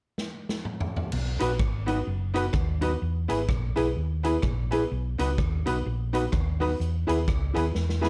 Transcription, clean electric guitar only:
0, 0, Header, 1, 3, 480
1, 0, Start_track
1, 0, Key_signature, 5, "major"
1, 0, Tempo, 473186
1, 1140, Time_signature, 4, 2, 24, 8
1, 8211, End_track
2, 0, Start_track
2, 0, Title_t, "Clean electric guitar"
2, 0, Program_c, 0, 27
2, 1425, Note_on_c, 0, 63, 80
2, 1429, Note_on_c, 0, 66, 92
2, 1435, Note_on_c, 0, 71, 91
2, 1524, Note_off_c, 0, 63, 0
2, 1526, Note_off_c, 0, 66, 0
2, 1530, Note_off_c, 0, 71, 0
2, 1906, Note_on_c, 0, 63, 82
2, 1912, Note_on_c, 0, 66, 82
2, 1918, Note_on_c, 0, 71, 89
2, 2005, Note_off_c, 0, 63, 0
2, 2008, Note_off_c, 0, 66, 0
2, 2011, Note_off_c, 0, 71, 0
2, 2376, Note_on_c, 0, 63, 83
2, 2384, Note_on_c, 0, 66, 91
2, 2386, Note_on_c, 0, 71, 99
2, 2480, Note_off_c, 0, 63, 0
2, 2484, Note_off_c, 0, 66, 0
2, 2485, Note_off_c, 0, 71, 0
2, 2852, Note_on_c, 0, 63, 88
2, 2858, Note_on_c, 0, 66, 95
2, 2869, Note_on_c, 0, 71, 97
2, 2958, Note_off_c, 0, 63, 0
2, 2961, Note_off_c, 0, 66, 0
2, 2966, Note_off_c, 0, 71, 0
2, 3332, Note_on_c, 0, 64, 78
2, 3337, Note_on_c, 0, 68, 88
2, 3343, Note_on_c, 0, 71, 92
2, 3437, Note_off_c, 0, 64, 0
2, 3440, Note_off_c, 0, 68, 0
2, 3443, Note_off_c, 0, 71, 0
2, 3812, Note_on_c, 0, 64, 84
2, 3820, Note_on_c, 0, 68, 92
2, 3830, Note_on_c, 0, 71, 103
2, 3917, Note_off_c, 0, 64, 0
2, 3921, Note_off_c, 0, 68, 0
2, 3926, Note_off_c, 0, 71, 0
2, 4307, Note_on_c, 0, 64, 76
2, 4314, Note_on_c, 0, 68, 87
2, 4322, Note_on_c, 0, 71, 91
2, 4405, Note_off_c, 0, 64, 0
2, 4408, Note_off_c, 0, 68, 0
2, 4412, Note_off_c, 0, 71, 0
2, 4795, Note_on_c, 0, 64, 90
2, 4799, Note_on_c, 0, 68, 98
2, 4809, Note_on_c, 0, 71, 93
2, 4889, Note_off_c, 0, 64, 0
2, 4891, Note_off_c, 0, 68, 0
2, 4895, Note_off_c, 0, 71, 0
2, 5265, Note_on_c, 0, 63, 84
2, 5272, Note_on_c, 0, 71, 85
2, 5273, Note_on_c, 0, 66, 89
2, 5364, Note_off_c, 0, 63, 0
2, 5367, Note_off_c, 0, 66, 0
2, 5367, Note_off_c, 0, 71, 0
2, 5738, Note_on_c, 0, 63, 75
2, 5749, Note_on_c, 0, 66, 81
2, 5753, Note_on_c, 0, 71, 86
2, 5840, Note_off_c, 0, 63, 0
2, 5845, Note_off_c, 0, 66, 0
2, 5847, Note_off_c, 0, 71, 0
2, 6218, Note_on_c, 0, 63, 78
2, 6230, Note_on_c, 0, 71, 97
2, 6231, Note_on_c, 0, 66, 98
2, 6320, Note_off_c, 0, 63, 0
2, 6326, Note_off_c, 0, 66, 0
2, 6326, Note_off_c, 0, 71, 0
2, 6695, Note_on_c, 0, 66, 92
2, 6696, Note_on_c, 0, 63, 86
2, 6708, Note_on_c, 0, 71, 106
2, 6798, Note_off_c, 0, 66, 0
2, 6799, Note_off_c, 0, 63, 0
2, 6805, Note_off_c, 0, 71, 0
2, 7170, Note_on_c, 0, 64, 93
2, 7177, Note_on_c, 0, 68, 93
2, 7183, Note_on_c, 0, 71, 92
2, 7276, Note_off_c, 0, 64, 0
2, 7279, Note_off_c, 0, 68, 0
2, 7282, Note_off_c, 0, 71, 0
2, 7644, Note_on_c, 0, 64, 85
2, 7651, Note_on_c, 0, 68, 87
2, 7659, Note_on_c, 0, 71, 85
2, 7753, Note_off_c, 0, 64, 0
2, 7756, Note_off_c, 0, 68, 0
2, 7760, Note_off_c, 0, 71, 0
2, 8128, Note_on_c, 0, 68, 85
2, 8129, Note_on_c, 0, 64, 87
2, 8137, Note_on_c, 0, 71, 89
2, 8211, Note_off_c, 0, 64, 0
2, 8211, Note_off_c, 0, 68, 0
2, 8211, Note_off_c, 0, 71, 0
2, 8211, End_track
3, 0, Start_track
3, 0, Title_t, "Muted clean electric guitar strokes"
3, 2096, Note_on_c, 9, 29, 44
3, 2198, Note_off_c, 9, 29, 0
3, 2574, Note_on_c, 9, 29, 41
3, 2676, Note_off_c, 9, 29, 0
3, 4016, Note_on_c, 9, 29, 42
3, 4118, Note_off_c, 9, 29, 0
3, 5947, Note_on_c, 9, 29, 43
3, 6049, Note_off_c, 9, 29, 0
3, 6420, Note_on_c, 9, 29, 36
3, 6521, Note_off_c, 9, 29, 0
3, 7834, Note_on_c, 9, 29, 39
3, 7935, Note_off_c, 9, 29, 0
3, 8211, End_track
0, 0, End_of_file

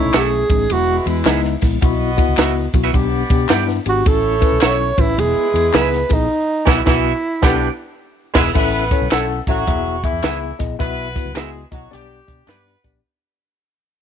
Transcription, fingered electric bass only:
0, 0, Header, 1, 3, 480
1, 0, Start_track
1, 0, Tempo, 560224
1, 1566, Time_signature, 4, 2, 24, 8
1, 12005, End_track
2, 0, Start_track
2, 0, Title_t, "Fingered electric bass"
2, 0, Program_c, 0, 33
2, 44, Note_on_c, 0, 35, 92
2, 107, Note_off_c, 0, 35, 0
2, 123, Note_on_c, 0, 35, 100
2, 359, Note_off_c, 0, 35, 0
2, 429, Note_on_c, 0, 33, 92
2, 560, Note_off_c, 0, 33, 0
2, 600, Note_on_c, 0, 28, 94
2, 837, Note_off_c, 0, 28, 0
2, 908, Note_on_c, 0, 40, 104
2, 1039, Note_off_c, 0, 40, 0
2, 1076, Note_on_c, 0, 37, 93
2, 1315, Note_off_c, 0, 37, 0
2, 1392, Note_on_c, 0, 34, 99
2, 1522, Note_off_c, 0, 34, 0
2, 1562, Note_on_c, 0, 35, 108
2, 1863, Note_off_c, 0, 35, 0
2, 1959, Note_on_c, 0, 37, 89
2, 2024, Note_off_c, 0, 37, 0
2, 2038, Note_on_c, 0, 37, 91
2, 2276, Note_off_c, 0, 37, 0
2, 2348, Note_on_c, 0, 35, 94
2, 2479, Note_off_c, 0, 35, 0
2, 2521, Note_on_c, 0, 35, 106
2, 2758, Note_off_c, 0, 35, 0
2, 2830, Note_on_c, 0, 47, 105
2, 2961, Note_off_c, 0, 47, 0
2, 3002, Note_on_c, 0, 43, 96
2, 3239, Note_off_c, 0, 43, 0
2, 3308, Note_on_c, 0, 32, 101
2, 3440, Note_off_c, 0, 32, 0
2, 3477, Note_on_c, 0, 33, 118
2, 3780, Note_off_c, 0, 33, 0
2, 3874, Note_on_c, 0, 35, 91
2, 3941, Note_off_c, 0, 35, 0
2, 3964, Note_on_c, 0, 35, 91
2, 4200, Note_off_c, 0, 35, 0
2, 4266, Note_on_c, 0, 33, 83
2, 4398, Note_off_c, 0, 33, 0
2, 4438, Note_on_c, 0, 28, 103
2, 4559, Note_off_c, 0, 28, 0
2, 4745, Note_on_c, 0, 40, 96
2, 4878, Note_off_c, 0, 40, 0
2, 4919, Note_on_c, 0, 37, 97
2, 5157, Note_off_c, 0, 37, 0
2, 5236, Note_on_c, 0, 34, 97
2, 5365, Note_off_c, 0, 34, 0
2, 5715, Note_on_c, 0, 35, 102
2, 5831, Note_off_c, 0, 35, 0
2, 5884, Note_on_c, 0, 35, 110
2, 6097, Note_off_c, 0, 35, 0
2, 6366, Note_on_c, 0, 35, 103
2, 6578, Note_off_c, 0, 35, 0
2, 7155, Note_on_c, 0, 28, 107
2, 7272, Note_off_c, 0, 28, 0
2, 7331, Note_on_c, 0, 33, 99
2, 7629, Note_off_c, 0, 33, 0
2, 7725, Note_on_c, 0, 35, 83
2, 7789, Note_off_c, 0, 35, 0
2, 7811, Note_on_c, 0, 35, 97
2, 8045, Note_off_c, 0, 35, 0
2, 8113, Note_on_c, 0, 33, 91
2, 8244, Note_off_c, 0, 33, 0
2, 8293, Note_on_c, 0, 28, 88
2, 8591, Note_off_c, 0, 28, 0
2, 8676, Note_on_c, 0, 40, 86
2, 8743, Note_off_c, 0, 40, 0
2, 8766, Note_on_c, 0, 37, 92
2, 9003, Note_off_c, 0, 37, 0
2, 9085, Note_on_c, 0, 34, 100
2, 9211, Note_off_c, 0, 34, 0
2, 9255, Note_on_c, 0, 35, 115
2, 9552, Note_off_c, 0, 35, 0
2, 9642, Note_on_c, 0, 37, 88
2, 9707, Note_off_c, 0, 37, 0
2, 10039, Note_on_c, 0, 35, 94
2, 10168, Note_off_c, 0, 35, 0
2, 10215, Note_on_c, 0, 35, 99
2, 10449, Note_off_c, 0, 35, 0
2, 10524, Note_on_c, 0, 47, 108
2, 10651, Note_off_c, 0, 47, 0
2, 10684, Note_on_c, 0, 43, 91
2, 10922, Note_off_c, 0, 43, 0
2, 11007, Note_on_c, 0, 34, 88
2, 11133, Note_off_c, 0, 34, 0
2, 12005, End_track
3, 0, Start_track
3, 0, Title_t, "Muted fingered electric bass strokes"
3, 4590, Note_on_c, 9, 29, 48
3, 4676, Note_off_c, 9, 29, 0
3, 12005, End_track
0, 0, End_of_file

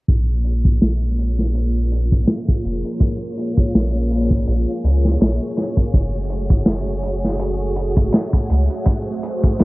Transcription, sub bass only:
0, 0, Header, 1, 2, 480
1, 0, Start_track
1, 0, Key_signature, -5, "minor"
1, 0, Tempo, 731707
1, 56, Time_signature, 4, 2, 24, 8
1, 6324, End_track
2, 0, Start_track
2, 0, Title_t, "Sub bass"
2, 0, Program_c, 0, 38
2, 55, Note_on_c, 0, 34, 87
2, 516, Note_off_c, 0, 34, 0
2, 536, Note_on_c, 0, 34, 76
2, 1476, Note_off_c, 0, 34, 0
2, 1736, Note_on_c, 0, 29, 94
2, 1855, Note_off_c, 0, 29, 0
2, 2454, Note_on_c, 0, 34, 72
2, 2915, Note_off_c, 0, 34, 0
2, 2935, Note_on_c, 0, 34, 92
2, 3055, Note_off_c, 0, 34, 0
2, 3172, Note_on_c, 0, 37, 93
2, 3389, Note_off_c, 0, 37, 0
2, 3412, Note_on_c, 0, 34, 93
2, 3533, Note_off_c, 0, 34, 0
2, 3896, Note_on_c, 0, 30, 96
2, 4356, Note_off_c, 0, 30, 0
2, 4373, Note_on_c, 0, 30, 74
2, 5315, Note_off_c, 0, 30, 0
2, 5578, Note_on_c, 0, 37, 97
2, 5696, Note_off_c, 0, 37, 0
2, 6301, Note_on_c, 0, 30, 77
2, 6324, Note_off_c, 0, 30, 0
2, 6324, End_track
0, 0, End_of_file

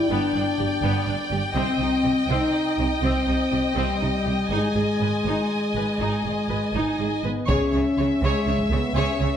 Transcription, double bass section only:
0, 0, Header, 1, 2, 480
1, 0, Start_track
1, 0, Tempo, 486224
1, 1531, Time_signature, 12, 3, 24, 8
1, 3461, Tempo, 497100
1, 7301, Tempo, 487013
1, 9159, End_track
2, 0, Start_track
2, 0, Title_t, "Double bass section"
2, 0, Program_c, 0, 48
2, 102, Note_on_c, 0, 31, 55
2, 181, Note_off_c, 0, 31, 0
2, 338, Note_on_c, 0, 31, 35
2, 417, Note_off_c, 0, 31, 0
2, 582, Note_on_c, 0, 31, 35
2, 661, Note_off_c, 0, 31, 0
2, 814, Note_on_c, 0, 31, 53
2, 893, Note_off_c, 0, 31, 0
2, 1061, Note_on_c, 0, 31, 37
2, 1140, Note_off_c, 0, 31, 0
2, 1297, Note_on_c, 0, 31, 37
2, 1376, Note_off_c, 0, 31, 0
2, 1531, Note_on_c, 0, 36, 58
2, 1610, Note_off_c, 0, 36, 0
2, 1767, Note_on_c, 0, 36, 33
2, 1846, Note_off_c, 0, 36, 0
2, 2010, Note_on_c, 0, 36, 31
2, 2089, Note_off_c, 0, 36, 0
2, 2249, Note_on_c, 0, 36, 48
2, 2328, Note_off_c, 0, 36, 0
2, 2740, Note_on_c, 0, 36, 32
2, 2819, Note_off_c, 0, 36, 0
2, 2984, Note_on_c, 0, 36, 45
2, 3063, Note_off_c, 0, 36, 0
2, 3226, Note_on_c, 0, 36, 32
2, 3305, Note_off_c, 0, 36, 0
2, 3470, Note_on_c, 0, 36, 30
2, 3547, Note_off_c, 0, 36, 0
2, 3712, Note_on_c, 0, 36, 44
2, 3789, Note_off_c, 0, 36, 0
2, 3943, Note_on_c, 0, 36, 26
2, 4021, Note_off_c, 0, 36, 0
2, 4182, Note_on_c, 0, 36, 28
2, 4259, Note_off_c, 0, 36, 0
2, 4414, Note_on_c, 0, 32, 41
2, 4491, Note_off_c, 0, 32, 0
2, 4660, Note_on_c, 0, 32, 28
2, 4737, Note_off_c, 0, 32, 0
2, 4906, Note_on_c, 0, 32, 27
2, 4983, Note_off_c, 0, 32, 0
2, 5150, Note_on_c, 0, 32, 35
2, 5227, Note_off_c, 0, 32, 0
2, 5623, Note_on_c, 0, 32, 25
2, 5701, Note_off_c, 0, 32, 0
2, 5866, Note_on_c, 0, 32, 37
2, 5944, Note_off_c, 0, 32, 0
2, 6104, Note_on_c, 0, 32, 26
2, 6182, Note_off_c, 0, 32, 0
2, 6344, Note_on_c, 0, 32, 27
2, 6422, Note_off_c, 0, 32, 0
2, 6583, Note_on_c, 0, 32, 36
2, 6660, Note_off_c, 0, 32, 0
2, 6827, Note_on_c, 0, 32, 23
2, 6904, Note_off_c, 0, 32, 0
2, 7065, Note_on_c, 0, 32, 25
2, 7143, Note_off_c, 0, 32, 0
2, 7305, Note_on_c, 0, 37, 51
2, 7384, Note_off_c, 0, 37, 0
2, 7549, Note_on_c, 0, 37, 37
2, 7627, Note_off_c, 0, 37, 0
2, 7788, Note_on_c, 0, 37, 32
2, 7867, Note_off_c, 0, 37, 0
2, 8026, Note_on_c, 0, 37, 49
2, 8105, Note_off_c, 0, 37, 0
2, 8269, Note_on_c, 0, 37, 31
2, 8348, Note_off_c, 0, 37, 0
2, 8500, Note_on_c, 0, 37, 32
2, 8579, Note_off_c, 0, 37, 0
2, 8740, Note_on_c, 0, 37, 49
2, 8819, Note_off_c, 0, 37, 0
2, 8988, Note_on_c, 0, 37, 33
2, 9066, Note_off_c, 0, 37, 0
2, 9159, End_track
0, 0, End_of_file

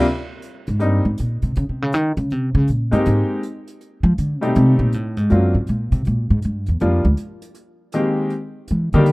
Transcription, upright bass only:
0, 0, Header, 1, 2, 480
1, 0, Start_track
1, 0, Key_signature, -3, "minor"
1, 0, Tempo, 375469
1, 58, Time_signature, 4, 2, 24, 8
1, 11662, End_track
2, 0, Start_track
2, 0, Title_t, "Upright bass"
2, 0, Program_c, 0, 32
2, 868, Note_on_c, 0, 44, 85
2, 1055, Note_off_c, 0, 44, 0
2, 1055, Note_on_c, 0, 43, 84
2, 1339, Note_off_c, 0, 43, 0
2, 1344, Note_on_c, 0, 44, 82
2, 1501, Note_off_c, 0, 44, 0
2, 1530, Note_on_c, 0, 46, 68
2, 1816, Note_off_c, 0, 46, 0
2, 1824, Note_on_c, 0, 48, 78
2, 1981, Note_off_c, 0, 48, 0
2, 2006, Note_on_c, 0, 49, 104
2, 2148, Note_off_c, 0, 49, 0
2, 2162, Note_on_c, 0, 48, 58
2, 2331, Note_off_c, 0, 48, 0
2, 2331, Note_on_c, 0, 49, 82
2, 2479, Note_off_c, 0, 49, 0
2, 2479, Note_on_c, 0, 51, 85
2, 2771, Note_off_c, 0, 51, 0
2, 2776, Note_on_c, 0, 49, 95
2, 2963, Note_off_c, 0, 49, 0
2, 2963, Note_on_c, 0, 48, 79
2, 3249, Note_off_c, 0, 48, 0
2, 3256, Note_on_c, 0, 49, 102
2, 3417, Note_off_c, 0, 49, 0
2, 3444, Note_on_c, 0, 46, 65
2, 3729, Note_off_c, 0, 46, 0
2, 3736, Note_on_c, 0, 43, 76
2, 3897, Note_off_c, 0, 43, 0
2, 3920, Note_on_c, 0, 44, 100
2, 4100, Note_off_c, 0, 44, 0
2, 5156, Note_on_c, 0, 53, 99
2, 5326, Note_off_c, 0, 53, 0
2, 5349, Note_on_c, 0, 50, 76
2, 5639, Note_off_c, 0, 50, 0
2, 5639, Note_on_c, 0, 47, 83
2, 5807, Note_off_c, 0, 47, 0
2, 5831, Note_on_c, 0, 48, 109
2, 6116, Note_off_c, 0, 48, 0
2, 6123, Note_on_c, 0, 46, 92
2, 6316, Note_off_c, 0, 46, 0
2, 6316, Note_on_c, 0, 45, 68
2, 6609, Note_off_c, 0, 45, 0
2, 6609, Note_on_c, 0, 44, 88
2, 6772, Note_off_c, 0, 44, 0
2, 6794, Note_on_c, 0, 42, 77
2, 7081, Note_off_c, 0, 42, 0
2, 7089, Note_on_c, 0, 44, 77
2, 7252, Note_off_c, 0, 44, 0
2, 7274, Note_on_c, 0, 46, 77
2, 7561, Note_off_c, 0, 46, 0
2, 7569, Note_on_c, 0, 48, 90
2, 7732, Note_off_c, 0, 48, 0
2, 7761, Note_on_c, 0, 46, 93
2, 8051, Note_off_c, 0, 46, 0
2, 8059, Note_on_c, 0, 44, 87
2, 8217, Note_off_c, 0, 44, 0
2, 8242, Note_on_c, 0, 43, 74
2, 8532, Note_off_c, 0, 43, 0
2, 8545, Note_on_c, 0, 40, 75
2, 8700, Note_off_c, 0, 40, 0
2, 8713, Note_on_c, 0, 41, 100
2, 9002, Note_off_c, 0, 41, 0
2, 9009, Note_on_c, 0, 38, 95
2, 9110, Note_off_c, 0, 38, 0
2, 11131, Note_on_c, 0, 52, 77
2, 11417, Note_off_c, 0, 52, 0
2, 11429, Note_on_c, 0, 50, 100
2, 11662, Note_off_c, 0, 50, 0
2, 11662, End_track
0, 0, End_of_file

